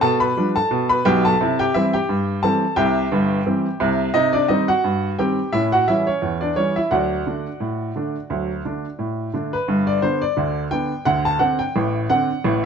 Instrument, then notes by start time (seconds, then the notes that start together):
upright piano
0.01 B2 A4 A5
0.20 B4 B5
0.37 F3 G3 D4
0.56 A4 A5
0.71 B2
0.89 B4 B5
1.05 B1 B2 G4 G5
1.25 A4 A5
1.41 C3 E4
1.59 G4 G5
1.74 E3 G3 C4 E4 E5
1.93 G4 G5
2.09 G2
2.43 E3 G3 C4 A4 A5
2.76 C2 C3 G4 E5 G5
3.12 G1 G2
3.46 E3 G3 C4
3.80 C2 C3
4.14 C3 D#4 D#5
4.33 D4 D5
4.48 D#3 G3 C4 D#4 D#5
4.68 F#4 F#5
4.84 G2
5.19 D#3 G3 C4 G4 G5
5.53 A2 C#4 E4 E5
5.72 F#4 F#5
5.88 E3 G3 C#4 E4 E5
6.07 C#4 C#5
6.22 E2
6.41 D4 D5
6.56 E3 G3 C#4 C#5
6.76 E4 E5
6.91 D2 F#3 F#4 D5 F#5
7.27 D3 A3 D4
7.60 A2
7.96 D3 A3 D4
8.30 D2 F#3
8.65 D3 A3 D4
8.99 A2
9.34 D3 A3 D4
9.53 B4
9.68 G1 G2
9.87 D5
10.02 D3 B3 D4 C5
10.22 D5
10.37 D2 D3
10.71 D3 B3 D4 G5
11.05 D2 D3 F#5
11.25 A5
11.39 D3 C4 D4 F#5
11.59 G5
11.76 A1 A2
12.10 D3 C4 D4 F#5
12.44 A1 A2